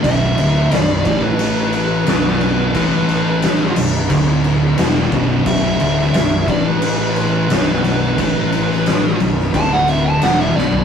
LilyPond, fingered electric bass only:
\new Staff \with { instrumentName = "Fingered electric bass" } { \clef bass \time 4/4 \key b \minor \tempo 4 = 88 b,,,8 d,,8 b,,,8 a,,4. b,,,4 | a,,4. b,,,8 d,,4 e,,8 b,,,8 | b,,,8 d,,8 b,,,8 a,,4. b,,,4 | a,,4. b,,,8 d,,4 e,,8 b,,,8 | }